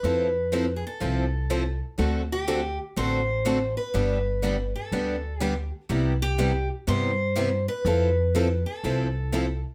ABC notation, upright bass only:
X:1
M:4/4
L:1/8
Q:"Swing" 1/4=123
K:Flyd
V:1 name="Upright bass" clef=bass
F,,4 C,,4 | D,,4 A,,,4 | G,,,4 D,,4 | C,,4 G,,4 |
F,,4 C,,4 |]